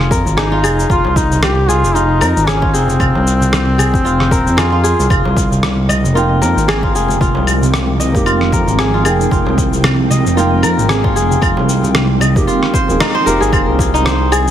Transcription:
Already playing: F1 F4 G#4
0.11 F2 A#4, kick, shaker
0.26 G#1, darbuka ka, shaker
0.37 D#4 G#4, cross-stick, shaker
0.52 F4
0.63 F1 G#4, claves, shaker
0.79 darbuka ka, shaker
0.90 F1 F4, kick, shaker
1.04 C2, darbuka tek
1.16 D#4, kick, shaker
1.32 darbuka dum, shaker
1.43 G4, cross-stick, claves, shaker
1.68 F4 G#4, darbuka tek, darbuka dum, shaker
1.83 F1, darbuka ka, shaker
1.95 D#4 F4, shaker
2.21 F2 A#4, darbuka ka, darbuka tek, claves, shaker
2.36 G#1, shaker
2.47 C#4 G#4, cross-stick, shaker
2.62 F4, kick, darbuka tek
2.73 F1 C4 G#4, shaker
2.88 darbuka dum, shaker
3.00 F1 F4, kick, claves, shaker
3.15 C2, darbuka tek
3.27 shaker
3.41 darbuka tek, darbuka dum, shaker
3.53 cross-stick, shaker
3.78 G#4, darbuka dum, claves, shaker
3.93 F1, kick, darbuka ka, shaker
4.05 F4, shaker
4.20 cross-stick
4.31 D#1 A#4, kick, shaker
4.46 F2, darbuka ka, shaker
4.57 F4 G#4, cross-stick, claves, shaker
4.72 F4
4.84 G#4, darbuka ka, shaker
4.99 C2, darbuka ka, shaker
5.10 F1 F3 G#3 C4 F4 G5, kick, claves, shaker
5.25 C2, darbuka tek
5.37 kick, shaker
5.51 darbuka dum, shaker
5.63 cross-stick, shaker
5.89 D#5, darbuka tek, darbuka dum, claves, shaker
6.04 F1, darbuka ka, shaker
6.14 A#3 D#4 F4 G5, shaker
6.42 F2 A#4, darbuka ka, darbuka tek, shaker
6.56 G#1, shaker
6.68 G#4, cross-stick, claves, shaker
6.83 F4, kick, darbuka tek
6.95 F1 G#4, shaker
7.09 darbuka dum, shaker
7.21 F1 F4, kick, shaker
7.35 C2, darbuka tek
7.47 claves, shaker
7.62 darbuka dum, shaker
7.74 cross-stick, shaker
8.00 D#5, darbuka dum, shaker
8.12 F1 A#3 D#4, kick, darbuka ka, shaker
8.16 G4
8.26 F4, claves, shaker
8.41 cross-stick
8.52 F2 A#4, kick, shaker
8.67 G#1, darbuka ka, shaker
8.79 G#4, cross-stick, shaker
8.94 F4
9.03 F1 A#3 D#4 G#4, claves, shaker
9.07 G5
9.20 darbuka ka, shaker
9.31 F1 F4, kick, shaker
9.46 C2, darbuka tek
9.58 kick, shaker
9.72 darbuka dum, shaker
9.84 cross-stick, claves, shaker
10.10 D#5, darbuka tek, darbuka dum, shaker
10.25 F1, darbuka ka, shaker
10.35 A#3 D#4 F4, shaker
10.39 G5
10.63 F2 A#4, darbuka ka, darbuka tek, claves, shaker
10.78 G#1, shaker
10.89 G#4, cross-stick, shaker
11.04 F4, kick, darbuka tek
11.16 F1 G#4, shaker
11.31 darbuka dum, shaker
11.42 F1 F4, kick, claves, shaker
11.57 C2, darbuka tek
11.69 shaker
11.83 darbuka tek, darbuka dum, shaker
11.95 cross-stick, shaker
12.20 D#5, darbuka tek, darbuka dum, claves, shaker
12.35 F1 A#3 D#4 G4, kick, darbuka ka, shaker
12.47 F4, shaker
12.63 cross-stick
12.74 C5, kick, shaker
12.88 D#1 A#3 D#4 G#4, darbuka ka, shaker
13.00 D#4, cross-stick, claves, shaker
13.15 C5
13.26 F1 A#3 D#4 G4 A#4, shaker
13.41 G#1 G#4, darbuka ka, shaker
13.52 F1 F3 C4 F4 G#4 G5, kick, claves, shaker
13.67 C2
13.79 kick, shaker
13.94 D#4, shaker
14.05 C5, cross-stick, shaker
14.32 G#4, claves, shaker
14.47 F1, shaker

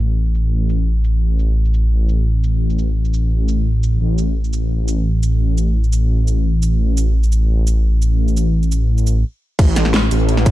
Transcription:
Already playing: A1
0.26 shaker
0.34 shaker
0.69 shaker
1.04 shaker
1.39 shaker
1.65 shaker
1.74 shaker
2.09 shaker
2.44 shaker
2.70 shaker
2.79 shaker
3.05 shaker
3.13 shaker
3.48 shaker
3.83 shaker
4.01 A1
4.18 shaker
4.44 shaker
4.53 shaker
4.88 shaker
5.23 shaker
5.58 shaker
5.84 shaker
5.93 shaker
6.27 shaker
6.62 shaker
6.97 shaker
7.23 shaker
7.32 shaker
7.67 shaker
8.02 shaker
8.28 shaker
8.37 shaker
8.63 shaker
8.72 shaker
8.98 shaker
9.07 shaker
9.59 A1, kick, closed hi-hat, crash
9.76 snare, closed hi-hat, shaker
9.85 snare
9.94 snare, closed hi-hat
10.11 A1, closed hi-hat, open hi-hat, shaker
10.20 closed hi-hat
10.29 closed hi-hat
10.37 snare
10.46 kick, closed hi-hat, shaker

